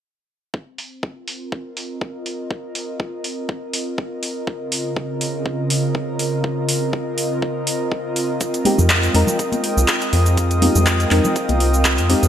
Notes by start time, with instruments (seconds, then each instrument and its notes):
0.54 analog synth pad C4, kick
0.78 open hi-hat
1.01 analog synth pad F4, kick
1.11 analog synth pad A#4
1.28 open hi-hat
1.52 kick
1.59 analog synth pad D#5
1.77 open hi-hat
2.01 kick
2.26 open hi-hat
2.51 kick
2.75 open hi-hat
3.00 kick
3.24 open hi-hat
3.49 kick
3.73 open hi-hat
3.98 kick
4.23 open hi-hat
4.47 analog synth pad C#3, kick
4.72 open hi-hat
4.96 kick
5.21 open hi-hat
5.46 kick
5.70 open hi-hat
5.95 kick
6.19 open hi-hat
6.44 kick
6.69 open hi-hat
6.93 kick
7.18 open hi-hat
7.42 kick
7.67 open hi-hat
7.92 kick
8.16 open hi-hat
8.41 analog synth pad G#3 F5 G5 D#6, kick, closed hi-hat, cabasa
8.54 closed hi-hat, cabasa
8.65 synth stab G#3 C4 D#4 G4, open hi-hat, high conga
8.78 analog synth bass F2, low conga, cabasa
8.90 kick, clap, closed hi-hat, cabasa
9.03 closed hi-hat, cabasa
9.13 analog synth bass F2, synth stab G#3 C4 D#4 A#4, open hi-hat
9.27 low conga, cabasa
9.39 kick, closed hi-hat, cabasa
9.52 closed hi-hat, high conga, cabasa
9.64 open hi-hat
9.77 analog synth bass C2, cabasa
9.88 kick, clap, closed hi-hat, cabasa
10.01 closed hi-hat, cabasa
10.13 analog synth bass F2, open hi-hat
10.26 closed hi-hat, cabasa
10.37 analog synth pad G5, kick, closed hi-hat, cabasa
10.51 closed hi-hat, cabasa
10.61 synth stab G#3 C4 D#4 G4, open hi-hat, high conga
10.75 analog synth bass F2, low conga, cabasa
10.86 kick, clap, closed hi-hat, cabasa
11.00 closed hi-hat, cabasa
11.10 analog synth bass F2, synth stab G#3 C4 D#4 A#4, clap, open hi-hat
11.24 low conga, cabasa
11.36 kick, closed hi-hat, cabasa
11.49 analog synth bass C2, closed hi-hat, high conga, cabasa
11.60 open hi-hat
11.74 cabasa
11.85 kick, clap, closed hi-hat, cabasa
11.98 analog synth bass F2, closed hi-hat, cabasa
12.09 synth stab G#3 C4 D#4 G4, open hi-hat
12.23 analog synth bass F2, closed hi-hat, cabasa